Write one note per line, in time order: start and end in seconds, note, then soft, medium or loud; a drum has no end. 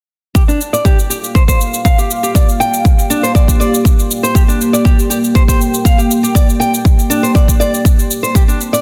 0.35 8.31 A#3 medium
0.35 0.42 G4 medium
0.35 8.31 G4 medium
0.35 4.31 F5 medium
0.35 kick loud
0.35 shaker medium
0.48 0.59 D4 medium
0.48 shaker soft
0.61 shaker soft
0.73 0.84 D5 medium
0.73 shaker soft
0.85 0.98 G4 medium
0.85 kick loud
0.85 shaker soft
0.99 shaker soft
1.10 1.17 G4 medium
1.10 shaker medium
1.24 shaker soft
1.35 1.42 C5 medium
1.35 kick loud
1.35 shaker soft
1.48 1.59 C5 medium
1.48 kick medium
1.48 shaker medium
1.61 shaker soft
1.74 shaker soft
1.85 1.98 F5 medium
1.85 kick loud
1.85 shaker medium
1.98 2.09 G4 medium
1.98 shaker soft
2.11 shaker medium
2.23 2.34 G4 medium
2.23 shaker soft
2.35 2.47 D5 medium
2.35 kick loud
2.35 shaker medium
2.49 shaker soft
2.60 2.72 G5 medium
2.60 shaker soft
2.74 shaker soft
2.85 kick loud
2.85 shaker soft
2.99 shaker soft
3.10 3.23 D4 medium
3.10 shaker medium
3.23 3.34 C5 medium
3.23 shaker soft
3.35 3.47 D5 medium
3.35 kick loud
3.35 shaker medium
3.48 kick medium
3.48 shaker medium
3.60 3.73 D5 medium
3.60 shaker soft
3.74 shaker soft
3.85 kick loud
3.85 shaker medium
3.99 shaker soft
4.11 shaker medium
4.23 4.34 C5 medium
4.23 shaker soft
4.35 4.42 G4 medium
4.35 8.31 G5 medium
4.35 kick loud
4.35 shaker medium
4.48 4.59 D4 medium
4.48 shaker soft
4.61 shaker soft
4.73 4.85 D5 medium
4.73 shaker soft
4.85 4.98 G4 medium
4.85 kick loud
4.85 shaker soft
4.99 shaker soft
5.10 5.17 G4 medium
5.10 shaker medium
5.24 shaker soft
5.35 5.42 C5 medium
5.35 kick loud
5.35 shaker soft
5.48 5.59 C5 medium
5.48 kick medium
5.48 shaker medium
5.61 shaker medium
5.74 shaker soft
5.85 5.98 F5 medium
5.85 kick loud
5.85 shaker medium
5.98 6.09 G4 medium
5.98 shaker soft
6.11 shaker medium
6.23 6.34 G4 medium
6.23 shaker medium
6.35 6.47 D5 medium
6.35 kick loud
6.35 shaker medium
6.49 shaker soft
6.60 6.72 G5 medium
6.60 shaker soft
6.74 shaker soft
6.85 kick loud
6.85 shaker soft
6.99 shaker soft
7.10 7.23 D4 medium
7.10 shaker medium
7.23 7.34 C5 medium
7.23 shaker soft
7.35 7.47 D5 medium
7.35 kick loud
7.35 shaker medium
7.48 kick medium
7.48 shaker medium
7.60 7.73 D5 medium
7.60 shaker soft
7.74 shaker soft
7.85 kick loud
7.85 shaker medium
7.99 shaker soft
8.11 shaker medium
8.23 8.34 C5 medium
8.23 shaker soft
8.35 8.81 C4 medium
8.35 8.42 G4 medium
8.35 8.81 A#4 medium
8.35 8.81 D5 medium
8.35 kick loud
8.35 shaker medium
8.48 8.59 D4 medium
8.48 shaker soft
8.61 shaker soft
8.73 8.81 D5 medium
8.73 shaker soft